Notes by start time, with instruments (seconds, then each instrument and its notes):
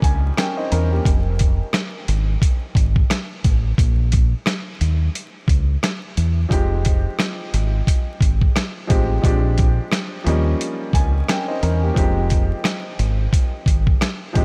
Already playing: grand piano F3 G3 A#3 C#4 D#4
0.02 fingered electric bass C#2, grand piano G#5, kick, closed hi-hat
0.37 grand piano C#4 A#4 G5, cross-stick, snare, closed hi-hat
0.57 grand piano D#4 C5 D#5
0.72 fingered electric bass E2, grand piano C#4 A#4, closed hi-hat
0.92 grand piano A#3 G4
1.05 fingered electric bass F1, kick, closed hi-hat
1.39 kick, closed hi-hat
1.73 cross-stick, snare, closed hi-hat
2.08 fingered electric bass G#1, closed hi-hat
2.42 kick, closed hi-hat
2.75 fingered electric bass G#1, kick, closed hi-hat
2.96 kick
3.10 cross-stick, snare, closed hi-hat
3.44 fingered electric bass A1, kick, closed hi-hat
3.78 fingered electric bass A#1, kick, closed hi-hat
4.12 kick, closed hi-hat
4.46 cross-stick, snare, closed hi-hat
4.81 fingered electric bass D#2, closed hi-hat
5.15 closed hi-hat
5.48 fingered electric bass C#2, kick, closed hi-hat
5.83 cross-stick, snare, closed hi-hat
6.17 fingered electric bass E2, closed hi-hat
6.49 fingered electric bass F1, grand piano F3 G#3 C4 D#4, kick, closed hi-hat
6.53 grand piano G4
6.85 kick, closed hi-hat
7.19 cross-stick, snare, closed hi-hat
7.54 fingered electric bass G#1, closed hi-hat
7.87 kick, closed hi-hat
8.21 fingered electric bass G#1, kick, closed hi-hat
8.41 kick
8.56 cross-stick, snare, closed hi-hat
8.87 fingered electric bass A1, grand piano F3 G#3 C4 D#4 G4, kick, closed hi-hat
9.22 fingered electric bass A#1, grand piano F3 G#3 C4 D4, kick, closed hi-hat
9.26 grand piano G4
9.58 kick, closed hi-hat
9.91 cross-stick, snare, closed hi-hat
10.24 fingered electric bass D#2, grand piano F3 G3 A#3 C#4 D#4, closed hi-hat
10.61 closed hi-hat
10.93 fingered electric bass C#2, grand piano G#5, kick, closed hi-hat
11.28 grand piano C#4 A#4 G5, cross-stick, snare, closed hi-hat
11.48 grand piano D#4 C5 D#5
11.63 fingered electric bass E2, grand piano C#4 A#4, closed hi-hat
11.83 grand piano A#3 G4
11.94 fingered electric bass F1, grand piano F3 G#3 C4 D#4 G4, kick, closed hi-hat
12.30 kick, closed hi-hat
12.64 cross-stick, snare, closed hi-hat
12.99 fingered electric bass G#1, closed hi-hat
13.33 kick, closed hi-hat
13.66 fingered electric bass G#1, kick, closed hi-hat
13.87 kick
14.01 cross-stick, snare, closed hi-hat
14.33 fingered electric bass A1, grand piano F3 G#3 C4 D#4 G4, kick, closed hi-hat